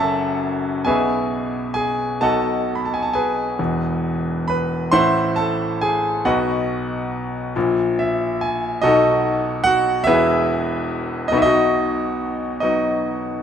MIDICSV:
0, 0, Header, 1, 2, 480
1, 0, Start_track
1, 0, Key_signature, 4, "major"
1, 0, Tempo, 878477
1, 467, Time_signature, 6, 3, 24, 8
1, 954, Tempo, 913242
1, 2394, Tempo, 879765
1, 3834, Tempo, 853485
1, 4794, Tempo, 827586
1, 6234, Tempo, 859599
1, 6714, Tempo, 904977
1, 7378, End_track
2, 0, Start_track
2, 0, Title_t, "Grand piano"
2, 0, Program_c, 0, 0
2, 0, Control_c, 0, 64, 127
2, 0, Note_on_c, 0, 30, 68
2, 0, Note_on_c, 0, 42, 72
2, 0, Note_on_c, 0, 66, 64
2, 0, Note_on_c, 0, 69, 60
2, 0, Note_on_c, 0, 73, 65
2, 0, Note_on_c, 0, 76, 63
2, 0, Note_on_c, 0, 78, 86
2, 0, Note_on_c, 0, 81, 83
2, 443, Note_off_c, 0, 81, 0
2, 444, Note_off_c, 0, 30, 0
2, 444, Note_off_c, 0, 42, 0
2, 448, Note_off_c, 0, 69, 0
2, 448, Note_off_c, 0, 76, 0
2, 462, Note_on_c, 0, 80, 81
2, 469, Note_on_c, 0, 47, 65
2, 470, Note_on_c, 0, 35, 58
2, 474, Note_on_c, 0, 68, 65
2, 474, Note_on_c, 0, 71, 59
2, 475, Control_c, 0, 64, 0
2, 475, Note_on_c, 0, 76, 62
2, 477, Note_off_c, 0, 73, 0
2, 479, Note_off_c, 0, 66, 0
2, 479, Note_off_c, 0, 78, 0
2, 576, Control_c, 0, 64, 127
2, 935, Note_off_c, 0, 68, 0
2, 935, Note_off_c, 0, 71, 0
2, 936, Note_off_c, 0, 76, 0
2, 942, Note_off_c, 0, 80, 0
2, 951, Note_on_c, 0, 80, 81
2, 961, Note_on_c, 0, 68, 60
2, 1177, Note_off_c, 0, 35, 0
2, 1177, Note_off_c, 0, 47, 0
2, 1184, Note_off_c, 0, 68, 0
2, 1197, Note_on_c, 0, 81, 87
2, 1199, Note_on_c, 0, 35, 55
2, 1199, Note_on_c, 0, 47, 61
2, 1203, Note_off_c, 0, 80, 0
2, 1204, Control_c, 0, 64, 0
2, 1206, Note_on_c, 0, 78, 58
2, 1207, Note_on_c, 0, 69, 66
2, 1207, Note_on_c, 0, 75, 59
2, 1285, Control_c, 0, 64, 127
2, 1466, Note_off_c, 0, 81, 0
2, 1471, Note_off_c, 0, 69, 0
2, 1471, Note_off_c, 0, 75, 0
2, 1471, Note_off_c, 0, 78, 0
2, 1484, Note_on_c, 0, 83, 64
2, 1535, Note_off_c, 0, 83, 0
2, 1536, Note_on_c, 0, 81, 62
2, 1580, Note_on_c, 0, 80, 66
2, 1585, Note_off_c, 0, 81, 0
2, 1626, Note_on_c, 0, 81, 66
2, 1632, Note_off_c, 0, 80, 0
2, 1680, Note_off_c, 0, 81, 0
2, 1684, Note_on_c, 0, 80, 74
2, 1691, Note_on_c, 0, 68, 54
2, 1692, Note_on_c, 0, 71, 59
2, 1902, Note_off_c, 0, 35, 0
2, 1902, Note_off_c, 0, 47, 0
2, 1924, Note_on_c, 0, 28, 60
2, 1925, Note_on_c, 0, 40, 61
2, 1930, Control_c, 0, 64, 0
2, 2025, Control_c, 0, 64, 127
2, 2375, Note_off_c, 0, 68, 0
2, 2376, Note_off_c, 0, 71, 0
2, 2389, Note_on_c, 0, 83, 84
2, 2400, Note_on_c, 0, 71, 68
2, 2415, Note_off_c, 0, 80, 0
2, 2614, Note_off_c, 0, 28, 0
2, 2614, Note_off_c, 0, 40, 0
2, 2622, Note_off_c, 0, 71, 0
2, 2628, Note_on_c, 0, 84, 102
2, 2633, Note_on_c, 0, 45, 68
2, 2634, Note_on_c, 0, 33, 62
2, 2635, Note_on_c, 0, 72, 74
2, 2637, Note_on_c, 0, 78, 71
2, 2638, Note_on_c, 0, 76, 72
2, 2640, Note_off_c, 0, 83, 0
2, 2641, Control_c, 0, 64, 0
2, 2742, Control_c, 0, 64, 127
2, 2855, Note_off_c, 0, 84, 0
2, 2859, Note_off_c, 0, 72, 0
2, 2860, Note_off_c, 0, 78, 0
2, 2861, Note_off_c, 0, 76, 0
2, 2871, Note_on_c, 0, 81, 86
2, 2879, Note_on_c, 0, 69, 64
2, 3101, Note_off_c, 0, 69, 0
2, 3119, Note_on_c, 0, 80, 83
2, 3121, Note_off_c, 0, 81, 0
2, 3125, Note_on_c, 0, 68, 63
2, 3333, Note_off_c, 0, 45, 0
2, 3334, Note_off_c, 0, 33, 0
2, 3341, Note_off_c, 0, 80, 0
2, 3344, Note_off_c, 0, 68, 0
2, 3356, Note_on_c, 0, 47, 66
2, 3357, Note_on_c, 0, 35, 66
2, 3358, Note_on_c, 0, 78, 85
2, 3362, Note_on_c, 0, 66, 63
2, 3363, Control_c, 0, 64, 0
2, 3363, Note_on_c, 0, 75, 57
2, 3365, Note_on_c, 0, 71, 61
2, 3472, Control_c, 0, 64, 127
2, 4055, Note_off_c, 0, 35, 0
2, 4055, Note_off_c, 0, 47, 0
2, 4055, Note_off_c, 0, 78, 0
2, 4057, Note_off_c, 0, 66, 0
2, 4058, Note_off_c, 0, 75, 0
2, 4059, Note_off_c, 0, 71, 0
2, 4079, Note_on_c, 0, 46, 73
2, 4080, Note_on_c, 0, 34, 68
2, 4083, Control_c, 0, 64, 0
2, 4183, Control_c, 0, 64, 127
2, 4320, Note_on_c, 0, 76, 75
2, 4541, Note_off_c, 0, 76, 0
2, 4558, Note_on_c, 0, 80, 73
2, 4772, Note_off_c, 0, 34, 0
2, 4772, Note_off_c, 0, 46, 0
2, 4777, Note_off_c, 0, 80, 0
2, 4785, Note_on_c, 0, 75, 97
2, 4793, Note_on_c, 0, 35, 67
2, 4794, Note_on_c, 0, 47, 69
2, 4796, Note_on_c, 0, 63, 72
2, 4796, Note_on_c, 0, 66, 72
2, 4797, Note_on_c, 0, 69, 71
2, 4801, Control_c, 0, 64, 0
2, 4888, Control_c, 0, 64, 127
2, 5252, Note_off_c, 0, 63, 0
2, 5252, Note_off_c, 0, 66, 0
2, 5252, Note_off_c, 0, 69, 0
2, 5260, Note_on_c, 0, 78, 118
2, 5278, Note_on_c, 0, 66, 83
2, 5284, Note_off_c, 0, 75, 0
2, 5489, Note_off_c, 0, 35, 0
2, 5491, Note_off_c, 0, 47, 0
2, 5493, Note_on_c, 0, 76, 109
2, 5498, Note_off_c, 0, 66, 0
2, 5512, Note_on_c, 0, 40, 74
2, 5512, Note_on_c, 0, 71, 83
2, 5513, Note_off_c, 0, 78, 0
2, 5513, Note_on_c, 0, 28, 70
2, 5513, Note_on_c, 0, 68, 77
2, 5514, Note_on_c, 0, 64, 77
2, 5519, Control_c, 0, 64, 0
2, 5616, Control_c, 0, 64, 127
2, 6210, Note_off_c, 0, 68, 0
2, 6210, Note_off_c, 0, 71, 0
2, 6211, Note_off_c, 0, 28, 0
2, 6211, Note_off_c, 0, 64, 0
2, 6212, Note_off_c, 0, 40, 0
2, 6214, Note_on_c, 0, 75, 89
2, 6235, Note_on_c, 0, 35, 64
2, 6236, Note_on_c, 0, 47, 70
2, 6240, Control_c, 0, 64, 0
2, 6240, Note_on_c, 0, 63, 73
2, 6240, Note_on_c, 0, 66, 67
2, 6240, Note_on_c, 0, 71, 69
2, 6245, Note_off_c, 0, 76, 0
2, 6262, Note_off_c, 0, 75, 0
2, 6267, Note_on_c, 0, 76, 75
2, 6271, Note_off_c, 0, 63, 0
2, 6271, Note_off_c, 0, 66, 0
2, 6271, Note_off_c, 0, 71, 0
2, 6293, Note_on_c, 0, 75, 95
2, 6305, Note_off_c, 0, 76, 0
2, 6314, Note_on_c, 0, 63, 67
2, 6317, Note_on_c, 0, 66, 70
2, 6347, Control_c, 0, 64, 127
2, 6932, Note_off_c, 0, 63, 0
2, 6934, Note_off_c, 0, 66, 0
2, 6934, Note_off_c, 0, 75, 0
2, 6942, Note_on_c, 0, 75, 73
2, 6951, Note_on_c, 0, 54, 49
2, 6952, Note_on_c, 0, 59, 44
2, 6956, Note_on_c, 0, 63, 54
2, 6957, Note_on_c, 0, 66, 57
2, 7378, Note_off_c, 0, 35, 0
2, 7378, Note_off_c, 0, 47, 0
2, 7378, Note_off_c, 0, 54, 0
2, 7378, Note_off_c, 0, 59, 0
2, 7378, Note_off_c, 0, 63, 0
2, 7378, Note_off_c, 0, 66, 0
2, 7378, Note_off_c, 0, 75, 0
2, 7378, End_track
0, 0, End_of_file